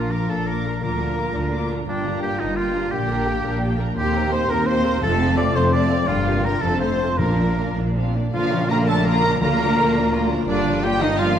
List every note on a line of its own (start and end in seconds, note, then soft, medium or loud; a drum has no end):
0.00 0.23 A#1 medium
0.00 0.23 A#2 medium
0.00 0.83 A#2 soft
0.00 2.93 F3 soft
0.00 0.79 A#3 soft
0.00 0.11 D4 soft
0.00 0.79 D4 soft
0.00 1.88 D4 soft
0.00 0.13 F4 medium
0.00 0.11 A#4 soft
0.00 0.27 F5 soft
0.00 0.11 A#5 soft
0.11 0.30 A#3 soft
0.11 1.16 F4 soft
0.11 0.30 F4 soft
0.11 0.29 A#4 medium
0.11 0.31 A#4 medium
0.11 0.28 A#5 medium
0.11 0.29 D6 soft
0.28 0.76 A#1 soft
0.28 0.76 A#2 soft
0.28 0.47 D4 soft
0.28 0.47 A4 medium
0.28 0.48 A4 medium
0.28 0.47 A#4 soft
0.28 0.62 F5 soft
0.28 0.46 A5 medium
0.28 0.47 A#5 soft
0.45 0.63 A#3 soft
0.45 0.64 F4 soft
0.45 0.80 A#4 medium
0.45 0.82 A#4 medium
0.45 1.33 D5 soft
0.45 0.82 A#5 medium
0.45 0.64 D6 soft
0.64 0.82 D4 soft
0.64 0.82 A#4 soft
0.64 2.93 F5 soft
0.64 0.83 A#5 soft
0.81 1.29 D2 medium
0.81 1.88 D3 soft
0.81 1.28 D3 medium
0.81 1.85 A#3 soft
0.81 0.99 A#3 soft
0.81 1.85 F4 soft
0.81 0.99 F4 soft
0.81 1.67 A#4 medium
0.81 1.68 A#4 medium
0.81 1.68 A#5 soft
0.81 0.99 D6 soft
0.99 3.08 A#3 soft
0.99 1.17 D4 soft
0.99 1.17 A#4 soft
0.99 1.18 A#5 soft
1.16 1.34 A#3 soft
1.16 1.50 F4 soft
1.16 1.34 F4 soft
1.16 1.36 D6 soft
1.34 1.81 D2 soft
1.34 1.80 D3 medium
1.34 1.52 D4 soft
1.34 1.52 A#4 soft
1.34 1.68 D5 soft
1.34 1.53 A#5 soft
1.51 1.68 A#3 soft
1.51 2.21 F4 soft
1.51 1.68 F4 soft
1.51 1.69 D6 soft
1.69 1.87 D4 soft
1.69 1.87 A#4 soft
1.69 2.56 D5 soft
1.69 1.88 A#5 soft
1.86 2.33 G1 medium
1.86 2.93 G2 medium
1.86 2.33 G2 medium
1.86 2.89 A#3 medium
1.86 2.03 A#3 soft
1.86 2.19 D4 medium
1.86 2.20 D4 medium
1.86 2.89 F4 medium
1.86 2.03 F4 soft
1.86 2.20 D5 medium
1.86 2.04 G5 soft
2.04 2.93 D3 soft
2.04 2.22 D4 soft
2.04 2.22 G4 soft
2.04 2.23 A#5 soft
2.21 2.39 A#3 soft
2.21 2.93 F4 soft
2.21 2.39 F4 soft
2.21 2.39 G4 medium
2.21 2.41 G4 medium
2.21 2.40 G5 soft
2.21 2.40 G5 medium
2.39 2.86 G1 medium
2.39 2.86 G2 medium
2.39 2.57 D4 soft
2.39 2.57 D#4 medium
2.39 2.57 G4 soft
2.39 2.74 A#4 soft
2.39 2.57 D#5 medium
2.39 2.57 A#5 soft
2.56 2.73 A#3 soft
2.56 2.93 F4 medium
2.56 2.73 F4 soft
2.56 2.92 F4 medium
2.56 3.61 D5 soft
2.56 2.91 F5 medium
2.56 2.74 G5 soft
2.74 2.92 D4 soft
2.74 2.91 G4 medium
2.74 3.43 A#4 soft
2.74 2.92 A#5 soft
2.91 3.38 A#1 medium
2.91 3.98 A#2 medium
2.91 3.38 A#2 medium
2.91 3.08 A#3 soft
2.91 3.95 A#3 medium
2.91 3.98 D4 medium
2.91 3.79 G4 medium
2.91 3.08 G4 medium
2.91 3.08 G5 soft
2.91 3.79 G5 medium
3.09 4.12 A#3 soft
3.09 3.26 D4 soft
3.09 3.26 A#4 soft
3.09 3.27 A#5 soft
3.26 3.45 A#3 soft
3.26 3.44 G4 medium
3.26 4.30 G4 soft
3.26 3.44 G5 medium
3.44 3.91 A#1 medium
3.44 3.91 A#2 medium
3.44 3.62 D4 soft
3.44 3.78 A#4 medium
3.44 3.62 A#4 medium
3.44 3.61 A#5 medium
3.61 3.78 A#3 soft
3.61 3.78 G4 medium
3.61 3.98 D5 soft
3.61 3.78 G5 medium
3.79 3.96 D4 medium
3.79 3.96 A#4 medium
3.79 4.47 A#4 medium
3.79 3.97 A#5 soft
3.97 4.43 D#2 medium
3.97 5.04 D#3 medium
3.97 4.47 A#3 medium
3.97 4.14 A#3 medium
3.97 4.46 C4 medium
3.97 4.29 G4 medium
3.97 4.13 G4 medium
3.97 4.29 G5 medium
3.97 4.13 C6 medium
4.13 5.03 A#3 medium
4.13 4.31 C4 medium
4.13 4.31 A#4 medium
4.13 4.32 A#5 medium
4.31 4.49 A#3 medium
4.31 5.03 G4 medium
4.31 4.49 G4 medium
4.31 4.51 C5 medium
4.31 4.49 C5 medium
4.31 4.49 C6 medium
4.47 4.96 D#2 medium
4.47 5.00 A#3 medium
4.47 5.00 C4 medium
4.47 4.67 C4 medium
4.47 4.82 A#4 medium
4.47 4.67 A#4 medium
4.47 4.68 A#4 medium
4.47 4.66 A#5 medium
4.47 4.67 A#5 medium
4.66 4.83 A#3 medium
4.66 4.83 G4 medium
4.66 5.70 C5 medium
4.66 5.02 C5 loud
4.66 5.02 C5 medium
4.66 5.01 C6 medium
4.66 4.84 C6 medium
4.83 5.02 C4 medium
4.83 5.03 A#4 medium
4.83 5.02 A#4 medium
4.83 5.03 A#5 medium
5.01 5.49 F1 medium
5.01 6.10 F2 medium
5.01 5.49 F2 medium
5.01 5.52 F2 medium
5.01 5.54 A3 medium
5.01 5.18 A3 medium
5.01 5.52 C4 medium
5.01 5.18 F4 medium
5.01 5.37 A4 medium
5.01 5.36 A4 loud
5.01 5.38 A5 medium
5.01 5.19 A5 medium
5.19 6.10 C3 medium
5.19 5.37 C4 medium
5.19 5.37 A4 medium
5.19 5.38 F5 medium
5.37 5.55 A3 medium
5.37 6.99 F4 medium
5.37 5.55 F4 medium
5.37 5.57 D5 medium
5.37 5.56 D5 medium
5.37 5.55 A5 medium
5.37 5.55 D6 medium
5.53 6.02 F1 medium
5.53 6.02 F2 medium
5.53 6.07 A3 medium
5.53 6.06 C4 medium
5.53 5.73 C4 medium
5.53 5.73 A4 medium
5.53 5.89 A4 medium
5.53 5.62 C5 medium
5.53 5.72 C5 medium
5.53 5.73 F5 medium
5.53 5.74 C6 medium
5.72 5.90 A3 medium
5.72 5.90 F4 medium
5.72 6.09 C5 medium
5.72 6.09 D5 loud
5.72 6.08 D5 medium
5.72 5.90 A5 medium
5.72 6.08 D6 medium
5.90 6.08 C4 medium
5.90 6.09 A4 medium
5.90 6.08 A4 medium
5.90 6.08 F5 medium
6.07 6.56 G1 medium
6.07 6.56 G2 medium
6.07 6.64 G2 medium
6.07 6.25 G3 medium
6.07 6.59 A#3 medium
6.07 6.59 D4 medium
6.07 6.47 F4 medium
6.07 6.44 F4 medium
6.07 6.25 F4 medium
6.07 6.44 F5 medium
6.07 6.25 G5 medium
6.25 6.64 A#3 medium
6.25 6.45 A#3 medium
6.25 6.44 G4 medium
6.25 6.44 F5 medium
6.44 6.63 G3 medium
6.44 6.64 D4 medium
6.44 6.62 F4 medium
6.44 6.62 A#4 medium
6.44 6.65 A#4 medium
6.44 6.63 A#4 medium
6.44 6.63 G5 medium
6.44 6.62 A#5 medium
6.61 7.13 F1 medium
6.61 7.13 F2 medium
6.61 7.21 F2 medium
6.61 7.20 A3 medium
6.61 7.20 C4 medium
6.61 6.81 C4 medium
6.61 6.81 F4 medium
6.61 6.79 A4 medium
6.61 6.81 A4 medium
6.61 6.80 A5 medium
6.61 6.82 A5 medium
6.80 7.00 A3 soft
6.80 7.21 C4 soft
6.80 7.00 A4 soft
6.80 7.19 C5 medium
6.80 7.01 F5 medium
6.80 7.18 C6 medium
7.00 7.20 C4 medium
7.00 7.56 F4 soft
7.00 7.18 F4 medium
7.00 7.21 A4 soft
7.00 7.20 A5 soft
7.18 7.70 A#1 medium
7.18 7.70 A#2 medium
7.18 8.32 A#2 medium
7.18 7.73 A#2 medium
7.18 7.73 A#3 medium
7.18 7.73 D4 medium
7.18 7.37 D4 medium
7.18 7.37 F4 medium
7.18 7.76 A#4 medium
7.18 7.37 F5 medium
7.18 7.76 A#5 medium
7.38 8.50 F3 soft
7.38 7.58 A#3 soft
7.38 7.56 D4 soft
7.38 7.58 D5 soft
7.57 7.77 D4 soft
7.57 7.77 F4 soft
7.57 8.69 F4 soft
7.57 7.77 F5 soft
7.76 8.27 A#1 medium
7.76 8.27 A#2 medium
7.76 7.94 A#3 medium
7.76 7.96 A#3 soft
7.76 7.94 D4 soft
7.76 8.13 A#4 soft
7.76 7.96 D5 soft
7.95 8.15 C4 medium
7.95 8.13 D4 soft
7.95 8.14 F4 soft
7.95 9.05 D5 soft
7.95 8.14 F5 soft
8.14 8.32 A#3 soft
8.14 8.33 D4 soft
8.14 8.32 D4 medium
8.14 8.87 A#4 soft
8.14 8.34 D5 medium
8.33 9.38 A#1 medium
8.33 9.43 A#2 medium
8.33 8.50 D3 medium
8.33 8.67 F3 medium
8.33 10.32 A#3 medium
8.33 8.50 A#3 medium
8.33 9.37 D4 medium
8.33 8.71 F4 medium
8.33 8.72 F4 medium
8.33 8.51 F4 medium
8.33 8.67 F5 medium
8.33 8.68 F5 medium
8.33 tam-tam medium
8.51 11.39 F3 soft
8.51 8.70 F3 medium
8.51 8.70 D4 medium
8.51 8.70 A#4 medium
8.69 8.89 D3 medium
8.69 8.87 A#3 medium
8.69 8.89 A#3 medium
8.69 8.88 F4 medium
8.69 9.76 F4 medium
8.69 8.89 A#4 medium
8.69 8.87 A#4 medium
8.69 8.88 A#4 medium
8.69 8.75 A#5 medium
8.69 8.77 A#5 medium
8.87 9.06 F3 medium
8.87 9.05 A3 medium
8.87 9.06 D4 medium
8.87 9.07 A4 medium
8.87 9.06 A4 medium
8.87 9.22 A#4 medium
8.87 9.06 A#4 medium
8.87 9.05 A5 medium
9.04 9.22 D3 medium
9.04 9.40 A#3 medium
9.04 9.22 A#3 medium
9.04 9.23 F4 medium
9.04 9.41 A#4 medium
9.04 10.11 D5 medium
9.04 9.41 A#5 medium
9.04 9.41 A#5 loud
9.23 9.41 F3 medium
9.23 9.41 D4 medium
9.23 9.42 D4 medium
9.23 9.94 A#4 medium
9.23 9.42 A#4 medium
9.41 10.48 D2 medium
9.41 9.91 D3 medium
9.41 10.50 D3 medium
9.41 9.58 D3 medium
9.41 10.28 A#3 medium
9.41 9.58 A#3 medium
9.41 11.39 F4 medium
9.41 9.59 F4 medium
9.41 10.28 A#4 medium
9.41 10.29 A#4 medium
9.41 10.29 A#5 medium
9.59 9.77 F3 medium
9.59 11.39 A#3 medium
9.59 9.77 D4 medium
9.59 9.78 D4 medium
9.59 9.78 A#4 medium
9.77 9.95 D3 medium
9.77 9.95 A#3 medium
9.77 10.82 F4 medium
9.77 9.95 F4 medium
9.95 10.13 F3 medium
9.95 10.13 D4 medium
9.95 10.29 A#4 medium
9.95 10.13 A#4 medium
10.12 10.29 D3 medium
10.12 10.29 A#3 medium
10.12 10.29 F4 medium
10.12 11.18 D5 medium
10.30 10.48 F3 medium
10.30 10.48 D4 medium
10.30 11.00 A#4 medium
10.30 10.49 A#4 medium
10.47 11.39 G1 medium
10.47 11.39 G2 medium
10.47 10.81 D3 medium
10.47 10.65 G3 medium
10.47 11.39 A#3 medium
10.47 10.65 A#3 medium
10.47 10.85 D4 medium
10.47 10.82 D4 medium
10.47 10.85 D4 medium
10.47 10.66 D4 medium
10.47 10.65 F4 medium
10.47 10.81 D5 medium
10.66 11.39 D3 medium
10.66 10.84 F3 medium
10.66 10.83 G3 medium
10.66 10.84 D4 medium
10.66 10.83 F4 medium
10.82 10.90 G3 medium
10.82 11.00 G3 medium
10.82 11.02 A#3 medium
10.82 11.01 D4 medium
10.82 11.39 F4 medium
10.82 11.01 F4 medium
10.82 11.03 G4 medium
10.82 11.00 G4 medium
10.82 11.02 G4 medium
10.82 11.00 G5 medium
10.82 11.01 G5 loud
11.01 11.08 D#3 medium
11.01 11.19 F3 medium
11.01 11.18 G3 medium
11.01 11.19 D4 medium
11.01 11.09 D#4 loud
11.01 11.20 D#4 medium
11.01 11.18 D#4 medium
11.01 11.19 F4 medium
11.01 11.35 A#4 medium
11.01 11.19 D#5 loud
11.01 11.07 D#5 loud
11.18 11.39 F3 medium
11.18 11.35 G3 medium
11.18 11.35 A#3 medium
11.18 11.36 D4 medium
11.18 11.39 F4 medium
11.18 11.36 F4 medium
11.18 11.39 D5 medium
11.18 11.39 F5 loud
11.18 11.39 F5 medium
11.36 11.39 A#4 medium